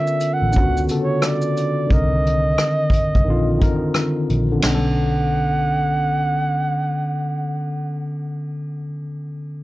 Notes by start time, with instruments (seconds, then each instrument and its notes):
Already playing: tine electric piano D3 B3 C#4 F4 A4 A#4, flugelhorn E5
0.07 shaker
0.21 closed hi-hat, shaker
0.33 flugelhorn F#5
0.42 fingered electric bass A1
0.52 tine electric piano B3 C#4 D4, shaker
0.56 fingered electric bass C#2, tine electric piano F#4, kick
0.77 shaker
0.86 tine electric piano C#3 D3 B3, closed hi-hat, shaker
0.91 tine electric piano A4
1.02 flugelhorn C#5
1.22 flugelhorn D5, cross-stick, shaker
1.42 shaker
1.57 closed hi-hat, shaker
1.87 tine electric piano D3 D#3 C4, kick
1.91 fingered electric bass C2, tine electric piano A#4, flugelhorn D#5
2.27 closed hi-hat
2.58 cross-stick
2.90 kick, closed hi-hat
3.15 fingered electric bass C2, kick
3.24 fingered electric bass A#1, tine electric piano D3 D#3 C4
3.30 tine electric piano F4
3.57 tine electric piano D3 D#3 C4, closed hi-hat
3.62 tine electric piano A#4, kick
3.94 cross-stick
4.30 fingered electric bass A#1, closed hi-hat
4.52 tine electric piano D3
4.59 tine electric piano B3, snare, ride bell
4.63 fingered electric bass B1, tine electric piano C#4, flugelhorn F#5
4.75 tine electric piano A4